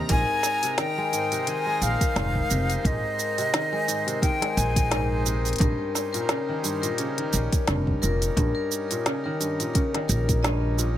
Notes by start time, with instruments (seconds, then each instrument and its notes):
Already playing: kora C3, accordion C4 D#4 A#4, synth texture A#5
0.09 upright bass A#1, kora G#2, accordion G#3, vibraphone A#4, flute G#5, kick, closed hi-hat, shaker
0.43 snare, shaker
0.63 kora C3, closed hi-hat, shaker
0.78 kora D#3, vibraphone A#4, flute G5, snare, closed hi-hat, shaker
0.98 kora G#3
1.12 kora G#2, closed hi-hat, shaker
1.17 accordion C5
1.31 kora C3, vibraphone A#4, closed hi-hat, shaker
1.47 kora D#3, flute G#5, closed hi-hat, shaker
1.66 kora G#3
1.81 upright bass A#1, flute F5, closed hi-hat, shaker
2.00 vibraphone A#4, kick, closed hi-hat, shaker
2.16 upright bass F1, kora G#2, snare, closed hi-hat, shaker
2.35 kick
2.50 upright bass F1, kora C3, vibraphone A#4, shaker
2.70 closed hi-hat, shaker
2.85 upright bass A#1, kora G#2, flute D#5, kick, closed hi-hat, shaker
3.19 vibraphone A#4, shaker
3.38 kora C3, closed hi-hat, shaker
3.53 kora D#3, snare, closed hi-hat, shaker
3.72 kora G#3, vibraphone A#4
3.88 kora G#2, closed hi-hat, shaker
4.07 kora C3, closed hi-hat, shaker
4.22 kora D#3, flute G5, kick, closed hi-hat, shaker
4.41 kora G#3, vibraphone A#4, snare, closed hi-hat
4.57 upright bass A#1, flute G#5, closed hi-hat, shaker
4.76 kick, closed hi-hat, shaker
4.91 kora G#2, vibraphone A#4, snare, closed hi-hat, shaker
5.26 kora C3, shaker
5.45 closed hi-hat, shaker
5.48 closed hi-hat
5.53 closed hi-hat
5.56 closed hi-hat
5.58 upright bass A#1, kora G2, accordion G3, vibraphone A#4, kick, closed hi-hat
5.61 closed hi-hat, shaker
5.68 accordion C#4
5.95 snare, shaker
6.13 kora A#2, vibraphone A#4, closed hi-hat, shaker
6.20 accordion A#4
6.29 kora C#3, snare, closed hi-hat, shaker
6.49 kora D#3
6.63 kora G2, closed hi-hat, shaker
6.82 kora A#2, vibraphone A#4, closed hi-hat, shaker
6.98 kora C#3, closed hi-hat, shaker
7.18 kora D#3, closed hi-hat
7.33 upright bass A#1, vibraphone A#4, closed hi-hat, shaker
7.53 kick, closed hi-hat, shaker
7.67 upright bass F1, kora G2, snare, closed hi-hat, shaker
7.87 kick
8.02 upright bass F1, kora A#2, vibraphone A#4, shaker
8.22 closed hi-hat, shaker
8.36 upright bass A#1, kora G2, kick, closed hi-hat, shaker
8.55 vibraphone A#4
8.72 shaker
8.91 kora A#2, closed hi-hat, shaker
9.06 kora C#3, snare, closed hi-hat, shaker
9.24 kora D#3, vibraphone A#4
9.40 kora G2, closed hi-hat, shaker
9.60 kora A#2, closed hi-hat, shaker
9.74 kora C#3, vibraphone A#4, kick, closed hi-hat, shaker
9.94 kora D#3, snare, closed hi-hat
10.08 upright bass A#1, vibraphone A#4, closed hi-hat, shaker
10.29 kick, closed hi-hat, shaker
10.43 kora G2, vibraphone D#5, snare, closed hi-hat, shaker
10.78 kora A#2, shaker